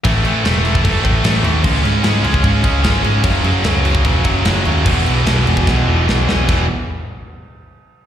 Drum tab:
CC |x-x-x-x-x-x-x-x-|x-x-x-x-x-x-x-x-|x-x-x-x-x-x-x-x-|x-x-x-x---------|
SD |----o-------o---|----o-------o---|----o-------o---|----o---o---o-o-|
BD |o------oo-o-----|o------oo-o-----|o------oo-o-----|o------oo-------|

CC |x---------------|
SD |----------------|
BD |o---------------|